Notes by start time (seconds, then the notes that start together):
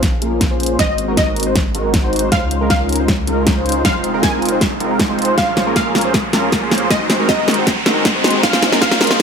Already playing: A#1 G#3 A#3 C#4, riser
0.03 kick, snare, closed hi-hat
0.22 A#3 C#4 F4 G#4 A#4, closed hi-hat
0.41 kick, snare, closed hi-hat
0.51 A#3 C#4 F4 G#4 C5
0.60 closed hi-hat
0.63 closed hi-hat
0.66 closed hi-hat
0.79 G#1 F#3 G#3 C4 D#4 F#4 C5 D#5, kick, snare, closed hi-hat
0.98 closed hi-hat
1.08 G#3 C4 D#4 F#4 A#4
1.17 D#5, kick, snare, closed hi-hat
1.36 closed hi-hat
1.40 closed hi-hat
1.43 G#3 C4 D#4 F#4 C5, closed hi-hat
1.55 kick, snare, closed hi-hat
1.75 G#3 C4 D#4 F#4 A#4, closed hi-hat
1.94 kick, snare, closed hi-hat
2.04 G#3 C4 D#4 F#4 C5
2.13 closed hi-hat
2.16 closed hi-hat
2.19 closed hi-hat
2.32 C#2 C#3 G#3 C#4 D#4 F4 C5 F5, kick, snare, closed hi-hat
2.51 closed hi-hat
2.61 G#3 C#4 D#4 F4 A#4
2.70 F5, kick, snare, closed hi-hat
2.89 closed hi-hat
2.93 closed hi-hat
2.96 G#3 C#4 D#4 F4 C5, closed hi-hat
3.08 kick, snare, closed hi-hat
3.27 G#3 C#4 D#4 F4 A#4, closed hi-hat
3.47 kick, snare, closed hi-hat
3.56 G#3 C#4 D#4 F4 C5
3.66 closed hi-hat
3.69 closed hi-hat
3.72 closed hi-hat
3.85 F1 F3 G#3 C4 D#4 F4 C5 F5, kick, snare, closed hi-hat
4.04 closed hi-hat
4.14 G#3 C4 D#4 F4 A#4
4.23 G#5, kick, snare, closed hi-hat
4.42 closed hi-hat
4.46 closed hi-hat
4.49 G#3 C4 D#4 F4 C5, closed hi-hat
4.61 kick, snare, closed hi-hat
4.80 G#3 C4 D#4 F4 A#4, closed hi-hat
4.99 kick, snare, closed hi-hat
5.09 G#3 C4 D#4 F4 C5
5.19 closed hi-hat
5.22 closed hi-hat
5.25 closed hi-hat
5.38 A#1 A#3 C#4 F4 G#4 C5 F5, kick, snare, closed hi-hat
5.57 snare, closed hi-hat
5.67 A#3 C#4 F4 G#4 A#4
5.76 F5, kick, snare, closed hi-hat
5.95 snare, closed hi-hat
5.98 closed hi-hat
6.01 A#3 C#4 F4 G#4 C5, closed hi-hat
6.14 kick, snare, closed hi-hat
6.33 A#3 C#4 F4 G#4 A#4, snare, closed hi-hat
6.52 kick, snare, closed hi-hat
6.62 A#3 C#4 F4 G#4 C5
6.71 snare, closed hi-hat
6.75 closed hi-hat
6.78 closed hi-hat
6.90 G#1 F#3 G#3 C4 D#4 F#4 C5 D#5, kick, snare, closed hi-hat
7.10 snare, closed hi-hat
7.20 G#3 C4 D#4 F#4 A#4
7.29 D#5, kick, snare, closed hi-hat
7.48 snare, closed hi-hat
7.51 closed hi-hat
7.54 G#3 C4 D#4 F#4 C5, closed hi-hat
7.67 kick, snare, closed hi-hat
7.86 G#3 C4 D#4 F#4 A#4, snare, closed hi-hat
8.05 kick, snare, closed hi-hat
8.15 G#3 C4 D#4 F#4 C5
8.24 snare, closed hi-hat
8.28 closed hi-hat
8.31 closed hi-hat
8.43 C#2 C#3 G#3 C#4 D#4 F4 C5 F5, kick, snare, closed hi-hat
8.53 snare
8.62 snare, closed hi-hat
8.72 G#3 C#4 D#4 F4 A#4, snare
8.82 F5, kick, snare, closed hi-hat
8.91 snare
9.01 snare, closed hi-hat
9.04 closed hi-hat
9.07 G#3 C#4 D#4 F4 C5, snare, closed hi-hat